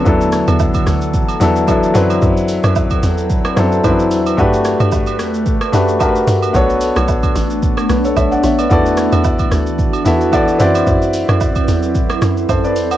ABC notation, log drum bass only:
X:1
M:4/4
L:1/16
Q:"Swing 16ths" 1/4=111
K:D
V:1 name="Log drum bass" clef=bass
E,,3 E,,3 D,,3 z E,,4 F,,2 | F,,3 F,,3 E,,4 F,,2 F,,2 E,,2 | G,,3 G,,3 E,,3 z F,,4 G,,2 | B,,,3 B,,,3 A,,,4 B,,,2 B,,,2 A,,,2 |
E,,3 E,,3 D,,3 z E,,4 F,,2 | F,,3 F,,3 E,,4 F,,2 F,,2 E,,2 |]